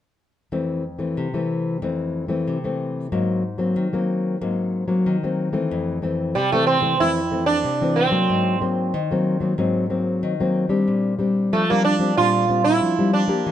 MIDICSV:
0, 0, Header, 1, 3, 480
1, 0, Start_track
1, 0, Key_signature, -1, "major"
1, 0, Tempo, 647249
1, 389, Time_signature, 4, 2, 24, 8
1, 10023, End_track
2, 0, Start_track
2, 0, Title_t, "Sitar"
2, 0, Program_c, 0, 104
2, 4710, Note_on_c, 0, 55, 70
2, 4834, Note_off_c, 0, 55, 0
2, 4837, Note_on_c, 0, 57, 79
2, 4941, Note_off_c, 0, 57, 0
2, 4944, Note_on_c, 0, 60, 80
2, 5171, Note_off_c, 0, 60, 0
2, 5193, Note_on_c, 0, 64, 86
2, 5531, Note_off_c, 0, 64, 0
2, 5534, Note_on_c, 0, 62, 88
2, 5902, Note_on_c, 0, 60, 73
2, 5913, Note_off_c, 0, 62, 0
2, 6356, Note_off_c, 0, 60, 0
2, 8551, Note_on_c, 0, 57, 69
2, 8673, Note_off_c, 0, 57, 0
2, 8677, Note_on_c, 0, 58, 74
2, 8781, Note_off_c, 0, 58, 0
2, 8784, Note_on_c, 0, 62, 87
2, 9026, Note_off_c, 0, 62, 0
2, 9029, Note_on_c, 0, 65, 90
2, 9373, Note_off_c, 0, 65, 0
2, 9376, Note_on_c, 0, 64, 90
2, 9716, Note_off_c, 0, 64, 0
2, 9740, Note_on_c, 0, 62, 75
2, 10023, Note_off_c, 0, 62, 0
2, 10023, End_track
3, 0, Start_track
3, 0, Title_t, "Nylon-string guitar"
3, 0, Program_c, 1, 24
3, 385, Note_on_c, 1, 41, 53
3, 387, Note_on_c, 1, 52, 43
3, 388, Note_on_c, 1, 57, 43
3, 391, Note_on_c, 1, 60, 53
3, 612, Note_off_c, 1, 52, 0
3, 614, Note_off_c, 1, 57, 0
3, 616, Note_off_c, 1, 60, 0
3, 731, Note_on_c, 1, 52, 46
3, 734, Note_on_c, 1, 57, 51
3, 740, Note_on_c, 1, 60, 54
3, 844, Note_off_c, 1, 41, 0
3, 870, Note_on_c, 1, 48, 56
3, 943, Note_off_c, 1, 52, 0
3, 945, Note_off_c, 1, 57, 0
3, 946, Note_off_c, 1, 60, 0
3, 992, Note_on_c, 1, 52, 51
3, 996, Note_on_c, 1, 57, 45
3, 999, Note_on_c, 1, 60, 58
3, 1314, Note_off_c, 1, 52, 0
3, 1315, Note_off_c, 1, 57, 0
3, 1317, Note_off_c, 1, 60, 0
3, 1327, Note_off_c, 1, 48, 0
3, 1350, Note_on_c, 1, 41, 55
3, 1351, Note_on_c, 1, 52, 45
3, 1353, Note_on_c, 1, 57, 42
3, 1358, Note_on_c, 1, 60, 47
3, 1673, Note_off_c, 1, 52, 0
3, 1674, Note_off_c, 1, 57, 0
3, 1677, Note_off_c, 1, 60, 0
3, 1694, Note_on_c, 1, 52, 56
3, 1697, Note_on_c, 1, 57, 53
3, 1701, Note_on_c, 1, 60, 56
3, 1808, Note_off_c, 1, 41, 0
3, 1835, Note_on_c, 1, 48, 57
3, 1905, Note_off_c, 1, 52, 0
3, 1906, Note_off_c, 1, 57, 0
3, 1908, Note_off_c, 1, 60, 0
3, 1957, Note_on_c, 1, 52, 52
3, 1961, Note_on_c, 1, 57, 52
3, 1964, Note_on_c, 1, 60, 56
3, 2276, Note_off_c, 1, 52, 0
3, 2279, Note_off_c, 1, 57, 0
3, 2280, Note_off_c, 1, 60, 0
3, 2290, Note_off_c, 1, 48, 0
3, 2314, Note_on_c, 1, 54, 47
3, 2315, Note_on_c, 1, 44, 59
3, 2316, Note_on_c, 1, 58, 51
3, 2321, Note_on_c, 1, 60, 49
3, 2538, Note_off_c, 1, 54, 0
3, 2540, Note_off_c, 1, 58, 0
3, 2541, Note_off_c, 1, 60, 0
3, 2656, Note_on_c, 1, 54, 53
3, 2658, Note_on_c, 1, 58, 50
3, 2664, Note_on_c, 1, 60, 61
3, 2770, Note_off_c, 1, 44, 0
3, 2788, Note_on_c, 1, 51, 59
3, 2866, Note_off_c, 1, 54, 0
3, 2868, Note_off_c, 1, 58, 0
3, 2869, Note_off_c, 1, 60, 0
3, 2914, Note_on_c, 1, 54, 51
3, 2918, Note_on_c, 1, 58, 52
3, 2920, Note_on_c, 1, 60, 61
3, 3235, Note_off_c, 1, 54, 0
3, 3237, Note_off_c, 1, 58, 0
3, 3238, Note_off_c, 1, 60, 0
3, 3247, Note_off_c, 1, 51, 0
3, 3273, Note_on_c, 1, 44, 59
3, 3273, Note_on_c, 1, 54, 44
3, 3276, Note_on_c, 1, 58, 50
3, 3278, Note_on_c, 1, 60, 52
3, 3594, Note_off_c, 1, 54, 0
3, 3596, Note_off_c, 1, 58, 0
3, 3597, Note_off_c, 1, 60, 0
3, 3616, Note_on_c, 1, 54, 59
3, 3620, Note_on_c, 1, 58, 56
3, 3623, Note_on_c, 1, 60, 60
3, 3729, Note_off_c, 1, 44, 0
3, 3755, Note_on_c, 1, 51, 61
3, 3826, Note_off_c, 1, 54, 0
3, 3828, Note_off_c, 1, 58, 0
3, 3830, Note_off_c, 1, 60, 0
3, 3880, Note_on_c, 1, 54, 50
3, 3883, Note_on_c, 1, 58, 54
3, 3886, Note_on_c, 1, 60, 58
3, 4078, Note_off_c, 1, 54, 0
3, 4080, Note_off_c, 1, 58, 0
3, 4081, Note_off_c, 1, 60, 0
3, 4099, Note_on_c, 1, 52, 59
3, 4102, Note_on_c, 1, 57, 58
3, 4106, Note_on_c, 1, 60, 62
3, 4210, Note_off_c, 1, 51, 0
3, 4237, Note_on_c, 1, 41, 61
3, 4456, Note_off_c, 1, 52, 0
3, 4462, Note_off_c, 1, 57, 0
3, 4464, Note_off_c, 1, 60, 0
3, 4465, Note_on_c, 1, 52, 50
3, 4470, Note_on_c, 1, 57, 51
3, 4474, Note_on_c, 1, 60, 59
3, 4691, Note_off_c, 1, 41, 0
3, 4694, Note_off_c, 1, 52, 0
3, 4697, Note_off_c, 1, 57, 0
3, 4698, Note_off_c, 1, 60, 0
3, 4714, Note_on_c, 1, 48, 59
3, 4838, Note_on_c, 1, 52, 55
3, 4841, Note_on_c, 1, 57, 57
3, 4846, Note_on_c, 1, 60, 58
3, 5037, Note_off_c, 1, 52, 0
3, 5039, Note_off_c, 1, 57, 0
3, 5039, Note_off_c, 1, 60, 0
3, 5054, Note_on_c, 1, 52, 54
3, 5060, Note_on_c, 1, 57, 57
3, 5062, Note_on_c, 1, 60, 63
3, 5145, Note_off_c, 1, 52, 0
3, 5146, Note_off_c, 1, 57, 0
3, 5148, Note_off_c, 1, 60, 0
3, 5169, Note_off_c, 1, 48, 0
3, 5194, Note_on_c, 1, 41, 61
3, 5195, Note_on_c, 1, 52, 48
3, 5198, Note_on_c, 1, 57, 48
3, 5202, Note_on_c, 1, 60, 58
3, 5334, Note_off_c, 1, 52, 0
3, 5335, Note_off_c, 1, 57, 0
3, 5338, Note_off_c, 1, 60, 0
3, 5423, Note_on_c, 1, 52, 49
3, 5428, Note_on_c, 1, 57, 52
3, 5430, Note_on_c, 1, 60, 52
3, 5649, Note_off_c, 1, 41, 0
3, 5653, Note_off_c, 1, 52, 0
3, 5654, Note_off_c, 1, 57, 0
3, 5656, Note_off_c, 1, 60, 0
3, 5668, Note_on_c, 1, 48, 61
3, 5796, Note_on_c, 1, 52, 56
3, 5800, Note_on_c, 1, 57, 53
3, 5801, Note_on_c, 1, 60, 55
3, 5995, Note_off_c, 1, 52, 0
3, 5996, Note_off_c, 1, 57, 0
3, 5997, Note_off_c, 1, 60, 0
3, 6013, Note_on_c, 1, 54, 55
3, 6019, Note_on_c, 1, 58, 59
3, 6019, Note_on_c, 1, 60, 64
3, 6125, Note_off_c, 1, 48, 0
3, 6153, Note_on_c, 1, 44, 61
3, 6343, Note_off_c, 1, 54, 0
3, 6345, Note_off_c, 1, 58, 0
3, 6346, Note_off_c, 1, 60, 0
3, 6383, Note_on_c, 1, 54, 57
3, 6388, Note_on_c, 1, 58, 57
3, 6391, Note_on_c, 1, 60, 60
3, 6607, Note_off_c, 1, 44, 0
3, 6612, Note_off_c, 1, 54, 0
3, 6613, Note_off_c, 1, 58, 0
3, 6615, Note_off_c, 1, 60, 0
3, 6629, Note_on_c, 1, 51, 64
3, 6756, Note_on_c, 1, 54, 53
3, 6762, Note_on_c, 1, 58, 55
3, 6764, Note_on_c, 1, 60, 58
3, 6955, Note_off_c, 1, 54, 0
3, 6956, Note_off_c, 1, 58, 0
3, 6958, Note_off_c, 1, 60, 0
3, 6972, Note_on_c, 1, 54, 51
3, 6979, Note_on_c, 1, 58, 57
3, 6981, Note_on_c, 1, 60, 61
3, 7063, Note_off_c, 1, 54, 0
3, 7065, Note_off_c, 1, 58, 0
3, 7067, Note_off_c, 1, 60, 0
3, 7085, Note_off_c, 1, 51, 0
3, 7104, Note_on_c, 1, 44, 57
3, 7107, Note_on_c, 1, 54, 46
3, 7108, Note_on_c, 1, 58, 54
3, 7112, Note_on_c, 1, 60, 56
3, 7308, Note_off_c, 1, 54, 0
3, 7310, Note_off_c, 1, 58, 0
3, 7312, Note_off_c, 1, 60, 0
3, 7340, Note_on_c, 1, 54, 46
3, 7343, Note_on_c, 1, 58, 47
3, 7347, Note_on_c, 1, 60, 53
3, 7563, Note_off_c, 1, 44, 0
3, 7586, Note_on_c, 1, 51, 63
3, 7666, Note_off_c, 1, 54, 0
3, 7667, Note_off_c, 1, 58, 0
3, 7669, Note_off_c, 1, 60, 0
3, 7712, Note_on_c, 1, 54, 53
3, 7717, Note_on_c, 1, 58, 58
3, 7718, Note_on_c, 1, 60, 58
3, 7912, Note_off_c, 1, 54, 0
3, 7913, Note_off_c, 1, 58, 0
3, 7914, Note_off_c, 1, 60, 0
3, 7930, Note_on_c, 1, 55, 60
3, 7933, Note_on_c, 1, 60, 60
3, 7936, Note_on_c, 1, 62, 63
3, 8043, Note_off_c, 1, 51, 0
3, 8065, Note_on_c, 1, 46, 62
3, 8260, Note_off_c, 1, 55, 0
3, 8262, Note_off_c, 1, 60, 0
3, 8264, Note_off_c, 1, 62, 0
3, 8295, Note_on_c, 1, 55, 54
3, 8302, Note_on_c, 1, 60, 51
3, 8303, Note_on_c, 1, 62, 59
3, 8522, Note_off_c, 1, 46, 0
3, 8549, Note_on_c, 1, 53, 64
3, 8623, Note_off_c, 1, 55, 0
3, 8625, Note_off_c, 1, 60, 0
3, 8627, Note_off_c, 1, 62, 0
3, 8678, Note_on_c, 1, 55, 59
3, 8684, Note_on_c, 1, 60, 56
3, 8684, Note_on_c, 1, 62, 61
3, 8875, Note_off_c, 1, 55, 0
3, 8876, Note_off_c, 1, 60, 0
3, 8877, Note_off_c, 1, 62, 0
3, 8894, Note_on_c, 1, 55, 55
3, 8898, Note_on_c, 1, 60, 53
3, 8903, Note_on_c, 1, 62, 66
3, 8982, Note_off_c, 1, 55, 0
3, 8984, Note_off_c, 1, 60, 0
3, 8986, Note_off_c, 1, 62, 0
3, 9004, Note_off_c, 1, 53, 0
3, 9031, Note_on_c, 1, 46, 61
3, 9033, Note_on_c, 1, 55, 50
3, 9036, Note_on_c, 1, 60, 52
3, 9038, Note_on_c, 1, 62, 52
3, 9231, Note_off_c, 1, 55, 0
3, 9232, Note_off_c, 1, 60, 0
3, 9234, Note_off_c, 1, 62, 0
3, 9263, Note_on_c, 1, 55, 52
3, 9267, Note_on_c, 1, 60, 49
3, 9269, Note_on_c, 1, 62, 58
3, 9485, Note_off_c, 1, 46, 0
3, 9509, Note_on_c, 1, 53, 61
3, 9587, Note_off_c, 1, 55, 0
3, 9588, Note_off_c, 1, 60, 0
3, 9589, Note_off_c, 1, 62, 0
3, 9630, Note_on_c, 1, 55, 59
3, 9636, Note_on_c, 1, 60, 58
3, 9636, Note_on_c, 1, 62, 54
3, 9831, Note_off_c, 1, 55, 0
3, 9832, Note_off_c, 1, 60, 0
3, 9833, Note_off_c, 1, 62, 0
3, 9847, Note_on_c, 1, 58, 61
3, 9852, Note_on_c, 1, 62, 64
3, 9856, Note_on_c, 1, 67, 66
3, 9964, Note_off_c, 1, 53, 0
3, 9986, Note_on_c, 1, 52, 66
3, 10023, Note_off_c, 1, 52, 0
3, 10023, Note_off_c, 1, 58, 0
3, 10023, Note_off_c, 1, 62, 0
3, 10023, Note_off_c, 1, 67, 0
3, 10023, End_track
0, 0, End_of_file